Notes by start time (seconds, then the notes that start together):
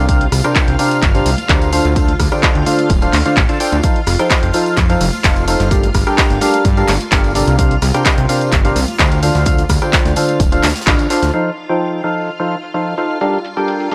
Already playing: C2 F4 F5
0.09 C3 D4 G4 A#4 C5 F5, kick, closed hi-hat, tambourine
0.21 closed hi-hat
0.32 C2, cross-stick, open hi-hat, tambourine
0.44 C3 D4 G4 A#4 C5 G5, cross-stick, closed hi-hat, tambourine
0.55 kick, clap, closed hi-hat, tambourine
0.68 C2, closed hi-hat
0.79 C3 D4 G4 A#4 C5 F5, open hi-hat, tambourine
0.91 closed hi-hat, tambourine
1.02 G1, kick, clap, closed hi-hat, tambourine
1.15 C3 D4 G4 A#4 C5 F5, closed hi-hat, tambourine
1.26 C2, open hi-hat, tambourine
1.38 closed hi-hat, tambourine, high conga
1.49 D2 D3 D4 G4 A#4 C5 F5, kick, clap, closed hi-hat, tambourine
1.62 closed hi-hat, tambourine
1.72 D3 D4 F4 A4 C5 F5, open hi-hat, tambourine
1.85 D2, closed hi-hat, tambourine
1.96 D3 D4 F4 A4 C5 F5, kick, closed hi-hat, tambourine
2.08 closed hi-hat, high conga
2.19 D2, kick, cross-stick, open hi-hat, tambourine
2.32 D3 D4 F4 A4 C5 G5, cross-stick, closed hi-hat, tambourine
2.43 kick, clap, closed hi-hat, tambourine
2.55 D2, closed hi-hat, high conga
2.66 D3 D4 F4 A4 C5 F5, open hi-hat, tambourine, high conga
2.79 closed hi-hat, tambourine
2.90 D1, kick, closed hi-hat, tambourine
3.02 D3 D4 F4 A4 C5 F5, closed hi-hat, tambourine
3.13 D2, clap, open hi-hat, tambourine, high conga
3.26 D3 D4 F4 A4 C5 F5, closed hi-hat, tambourine
3.37 A1, kick, clap, closed hi-hat, tambourine
3.49 D3 D4 F4 A4 C5 A5, closed hi-hat, tambourine
3.60 D4 F4 A4 C5 G5, open hi-hat, tambourine
3.72 D2, closed hi-hat, tambourine
3.83 F3 D#4 F4 A4 C5 F5, kick, closed hi-hat, tambourine
3.96 closed hi-hat
4.07 F1, cross-stick, snare, closed hi-hat, open hi-hat, tambourine
4.19 F3 D#4 F4 A4 C5 G5, cross-stick, closed hi-hat, tambourine
4.30 kick, snare, clap, closed hi-hat, tambourine
4.43 F1, closed hi-hat
4.53 F3 D#4 F4 A4 C5 F5, closed hi-hat, open hi-hat, tambourine
4.66 closed hi-hat, tambourine
4.77 F2, kick, clap, closed hi-hat, tambourine
4.89 F3 D#4 F4 A4 C5 F5, closed hi-hat, tambourine
5.00 F1, open hi-hat, tambourine
5.13 closed hi-hat, tambourine, high conga
5.24 F1 F3 D#4 F4 A4 C5 F5, kick, snare, clap, closed hi-hat, tambourine
5.36 closed hi-hat, tambourine
5.48 D#4 F4 A4 C5 F5, closed hi-hat, open hi-hat, tambourine
5.59 G1, snare, closed hi-hat, tambourine
5.71 G3 D4 G4 A4 A#4 F5, kick, closed hi-hat, tambourine
5.83 closed hi-hat, high conga
5.94 G1, kick, cross-stick, closed hi-hat, open hi-hat, tambourine
6.06 G3 D4 G4 A4 A#4 G5, cross-stick, closed hi-hat, tambourine
6.18 kick, snare, clap, closed hi-hat, tambourine
6.30 G1, snare, closed hi-hat, high conga
6.41 G3 D4 G4 A4 A#4 F5, snare, closed hi-hat, open hi-hat, tambourine, high conga
6.53 closed hi-hat, tambourine
6.65 G2, kick, closed hi-hat, tambourine
6.77 G3 D4 G4 A4 A#4 F5, closed hi-hat, tambourine
6.88 G1, clap, closed hi-hat, open hi-hat, tambourine, high conga
7.00 closed hi-hat, tambourine
7.12 G1 G3 D4 G4 A4 A#4 F5, kick, snare, clap, closed hi-hat, tambourine
7.24 closed hi-hat, tambourine
7.35 C3 D4 G4 A4 A#4 F5, snare, closed hi-hat, open hi-hat, tambourine
7.47 C2, closed hi-hat, tambourine
7.59 C3 D4 G4 A#4 C5 F5, kick, closed hi-hat, tambourine
7.71 closed hi-hat
7.82 C2, cross-stick, snare, closed hi-hat, open hi-hat, tambourine
7.94 C3 D4 G4 A#4 C5 G5, cross-stick, closed hi-hat, tambourine
8.05 kick, snare, clap, closed hi-hat, tambourine
8.18 C2, closed hi-hat
8.29 C3 D4 G4 A#4 C5 F5, closed hi-hat, open hi-hat, tambourine
8.41 closed hi-hat, tambourine
8.52 G1, kick, clap, closed hi-hat, tambourine
8.65 C3 D4 G4 A#4 C5 F5, closed hi-hat, tambourine
8.76 C2, open hi-hat, tambourine
8.88 closed hi-hat, tambourine, high conga
8.99 D2 D3 D4 G4 A#4 C5 F5, kick, snare, clap, closed hi-hat, tambourine
9.12 closed hi-hat, tambourine
9.22 D3 D4 F4 A4 C5 F5, closed hi-hat, open hi-hat, tambourine
9.35 D2, snare, closed hi-hat, tambourine
9.45 D3 D4 F4 A4 C5 F5, kick, closed hi-hat, tambourine
9.58 closed hi-hat, tambourine, high conga
9.69 D2, kick, cross-stick, closed hi-hat, open hi-hat, tambourine
9.82 D3 D4 F4 A4 C5 G5, cross-stick, closed hi-hat, tambourine
9.93 kick, snare, clap, closed hi-hat, tambourine
10.05 D2, snare, closed hi-hat, tambourine, high conga
10.16 D3 D4 F4 A4 C5 F5, closed hi-hat, open hi-hat, tambourine, high conga
10.29 closed hi-hat, tambourine
10.40 D1, kick, closed hi-hat, tambourine
10.52 D3 D4 F4 A4 C5 F5, closed hi-hat, tambourine
10.63 D2, snare, clap, closed hi-hat, open hi-hat, tambourine, high conga
10.69 snare, closed hi-hat
10.75 snare, closed hi-hat, tambourine
10.81 snare, closed hi-hat
10.86 A1 D3 D4 F4 A4 C5 F5, kick, snare, clap, closed hi-hat, tambourine
10.99 closed hi-hat, tambourine
11.10 D4 F4 A4 C5 F5, snare, closed hi-hat, open hi-hat, tambourine
11.22 D2, snare, closed hi-hat, tambourine
11.34 F3 D#4 F4 A4 C5 F5, closed hi-hat
11.57 closed hi-hat, shaker
11.69 F3 D#4 F4 A4 C5 G5
11.81 closed hi-hat
12.04 F3 D#4 F4 A4 C5 F5, closed hi-hat, shaker
12.16 closed hi-hat, shaker
12.27 closed hi-hat
12.40 F3 D#4 F4 A4 C5 F5
12.51 shaker
12.63 closed hi-hat, shaker
12.74 F3 D#4 F4 A4 C5 F5, closed hi-hat, shaker
12.87 closed hi-hat
12.98 D#4 F4 A4 C5 F5, closed hi-hat, shaker
13.10 closed hi-hat, shaker
13.21 G3 D4 G4 A4 A#4 F5, closed hi-hat, shaker
13.34 closed hi-hat
13.45 closed hi-hat, shaker
13.57 G3 D4 G4 A4 A#4 G5, closed hi-hat, shaker
13.68 closed hi-hat, shaker
13.80 closed hi-hat
13.91 G3 D4 G4 A4 A#4 F5, closed hi-hat, shaker